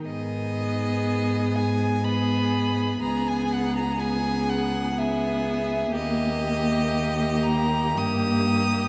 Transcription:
X:1
M:3/4
L:1/16
Q:1/4=61
K:G#m
V:1 name="Violin"
d6 g2 b4 | a g f a g2 f2 e4 | d6 a2 d'4 |]
V:2 name="Violin"
G8 G4 | G4 G4 G4 | =G8 G4 |]
V:3 name="Viola"
B,8 B,4 | B,4 B,4 B,4 | A,8 A,4 |]
V:4 name="Cello" clef=bass
G,,12 | C,,12 | D,,8 =G,,4 |]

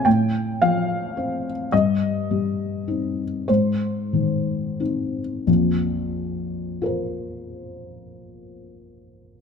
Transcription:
X:1
M:3/4
L:1/8
Q:1/4=91
K:Ab
V:1 name="Felt piano"
g2 f3 z | e6 | c4 z2 | z4 [FBc]2- |
[FBc]6 |]
V:2 name="Felt piano" clef=bass
=A,,2 F,2 C2 | G,,2 G,2 [CE]2 | A,,2 E,2 [CE]2 | [B,,,F,,]6- |
[B,,,F,,]6 |]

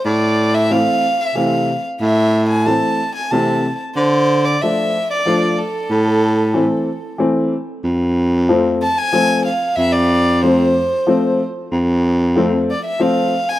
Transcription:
X:1
M:3/4
L:1/16
Q:1/4=93
K:Flyd
V:1 name="Violin"
d3 e f3 e f3 z | e3 ^g a3 g a3 z | c3 d e3 d3 A2- | A8 z4 |
z6 a ^g3 f2 | e d3 c6 z2 | z6 d e f3 ^g |]
V:2 name="Upright piano"
z4 [E,A,C]2 z2 [E,A,C]2 z2 | z4 [E,A,C]2 z2 [E,A,C]2 z2 | z4 [F,A,D]2 z2 [F,A,D]2 z2 | z4 [E,A,C]2 z2 [E,A,C]2 z2 |
z4 [F,A,C]2 z2 [F,A,C]2 z2 | z4 [F,A,C]2 z2 [F,A,C]2 z2 | z4 [F,A,C]2 z2 [F,A,C]2 z2 |]
V:3 name="Baritone saxophone" clef=bass
A,,8 C,4 | A,,8 C,4 | D,6 z2 F,4 | A,,8 z4 |
F,,12 | F,,12 | F,,8- F,,2 z2 |]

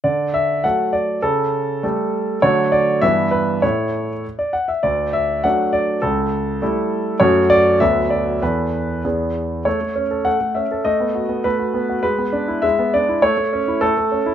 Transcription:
X:1
M:2/4
L:1/16
Q:1/4=100
K:D
V:1 name="Grand piano"
d2 e2 f2 d2 | A8 | c2 d2 e2 B2 | c4 z d f e |
d2 e2 f2 d2 | A8 | [K:A] c2 d2 e2 d2 | B4 z4 |
c4 f2 e2 | ^d4 B4 | B4 e2 d2 | c4 A4 |]
V:2 name="Grand piano"
D,4 [F,A,A]4 | C,4 [G,A,A]4 | [D,F,A,A]4 [G,,E,B,E]4 | [A,,A,E]4 z4 |
D,,4 [F,A,D]4 | C,,4 [G,A,E]4 | [K:A] [F,,F,A,F]4 [D,,F,B,A]4 | [E,,E,B,A]4 [E,,E,B,G]4 |
A, A, C A A, A, C A | A, B, F B, A, F B, F | G, B, D E G, B, D E | A, A, C E A, A, C E |]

